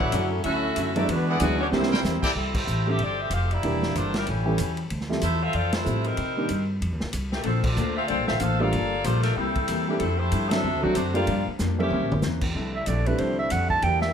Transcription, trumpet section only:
0.00 0.29 E4 loud
0.00 0.29 C#5 medium
0.00 0.29 D5 medium
0.00 0.29 F#5 loud
1.28 1.70 E4 medium
1.28 1.70 G#4 medium
1.28 1.70 D5 medium
1.28 1.70 F#5 medium
1.91 2.00 E4 loud
1.91 2.00 A#4 medium
1.91 2.00 C5 medium
1.91 2.00 G5 loud
2.23 2.31 E4 loud
2.23 2.31 A4 medium
2.23 2.32 D5 medium
2.23 2.31 G5 loud

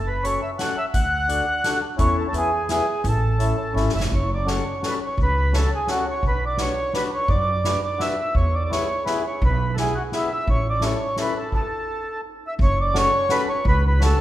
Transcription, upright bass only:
0.00 0.34 F#1 medium
0.94 1.39 D2 loud
1.99 2.21 E2 medium
2.33 2.79 E2 medium
3.04 3.50 A1 loud
3.74 3.92 G#1 medium
3.93 4.09 F#1 medium
4.11 4.58 F#1 medium
5.17 5.63 C#2 medium
6.23 6.69 B1 medium
7.28 7.74 F#2 loud
8.35 8.81 E2 medium
9.42 9.87 B1 loud
10.47 10.93 A1 medium
12.59 13.05 F#1 medium
13.65 14.11 C#2 loud

